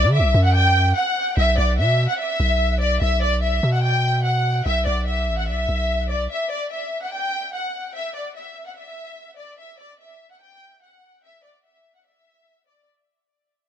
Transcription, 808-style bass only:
0.04 0.20 D3 loud
0.19 0.34 B1 loud
0.34 0.94 F#2 loud
1.37 1.57 B1 loud
1.58 1.80 B1 loud
1.78 2.08 B2 loud
2.40 2.99 B1 loud
3.02 3.61 B1 loud
3.63 4.62 B2 loud
4.66 4.86 B1 loud
4.86 5.29 B1 loud
5.28 5.50 A1 loud
5.48 5.68 B1 loud
5.69 6.28 B1 loud

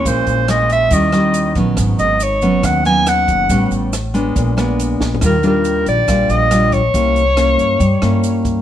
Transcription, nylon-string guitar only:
0.00 0.45 G#3 medium
0.00 0.45 C#4 medium
0.00 0.46 E4 medium
0.06 0.90 A#2 medium
0.49 0.90 G#3 medium
0.49 0.90 C#4 medium
0.49 0.90 E4 medium
0.91 1.75 D#3 medium
0.91 1.10 G3 medium
0.91 1.10 C#4 medium
0.91 1.10 E4 medium
1.13 1.52 G3 medium
1.13 1.53 C#4 medium
1.13 1.53 E4 medium
1.56 2.17 F#3 medium
1.56 2.18 B3 medium
1.56 2.18 C#4 medium
1.78 2.62 G#2 medium
2.42 2.82 F#3 medium
2.42 2.82 B3 medium
2.42 2.82 C#4 medium
2.63 3.47 D#3 medium
2.85 3.46 F#3 medium
2.85 3.46 B3 medium
2.85 3.47 C#4 medium
3.50 4.34 A2 medium
3.50 3.93 G3 soft
3.50 3.93 B3 medium
3.50 3.93 C#4 medium
4.14 4.54 G#3 medium
4.14 4.54 B3 medium
4.14 4.54 D4 medium
4.36 5.20 A#2 medium
4.57 5.18 G#3 medium
4.57 5.18 B3 medium
4.57 5.18 D4 medium
5.22 6.06 D#3 soft
5.22 5.35 G3 soft
5.22 5.35 D4 soft
5.22 5.35 F4 medium
5.43 6.04 G3 medium
5.43 6.05 D4 medium
5.43 6.05 F4 medium
6.08 6.92 A#2 medium
6.08 6.48 G3 medium
6.08 6.48 D4 medium
6.08 6.48 F4 medium
6.51 6.80 G3 medium
6.51 6.80 D4 medium
6.51 6.80 F4 medium
6.94 7.78 C3 soft
6.94 7.22 A#3 soft
6.94 7.22 C#4 soft
6.94 7.22 E4 medium
7.36 7.80 A#3 medium
7.36 7.80 C#4 medium
7.36 7.80 E4 medium
7.79 8.62 G3 medium
8.02 8.62 A#3 medium
8.02 8.62 C#4 medium
8.02 8.62 E4 medium

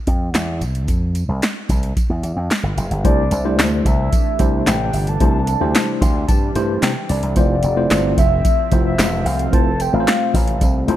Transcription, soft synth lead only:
3.05 3.55 D5 loud
3.86 4.63 E5 loud
4.68 5.10 G5 medium
5.09 5.89 A5 loud
7.38 8.15 D5 medium
8.19 8.82 E5 loud
8.86 9.28 E5 loud
9.27 9.55 F5 loud
9.54 9.83 A5 loud
9.81 9.96 G5 loud
9.94 10.96 F5 medium

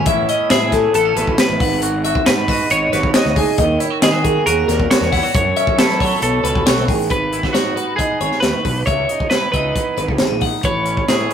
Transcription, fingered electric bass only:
0.06 0.23 A1 loud
0.50 0.84 A2 medium
0.94 1.11 A1 medium
1.16 1.33 A1 loud
1.49 1.58 A1 medium
1.61 2.12 G#1 loud
2.27 2.61 G#2 loud
2.71 2.88 G#1 medium
2.93 3.10 G#1 loud
3.25 3.42 D2 medium
3.59 3.76 D#2 loud
4.02 4.36 D#3 loud
4.46 4.63 D#2 medium
4.68 4.85 D#2 loud
5.01 5.18 E2 loud
5.34 5.51 F#2 loud
5.78 6.12 F#3 medium
6.22 6.39 B1 medium
6.43 6.64 C#2 medium
6.66 6.86 B1 medium
6.88 7.08 A1 medium
7.11 7.45 G#1 medium
7.54 7.72 G#2 medium
8.20 8.29 G#1 medium
8.43 8.51 D#2 medium
8.65 8.82 B1 medium
8.87 9.04 C#2 medium
9.53 9.71 C#2 medium
9.97 10.06 G#1 medium
10.09 10.17 C#2 medium
10.19 10.28 G#1 medium
10.30 10.48 A#1 medium
10.64 10.98 A1 medium
11.08 11.25 A2 medium

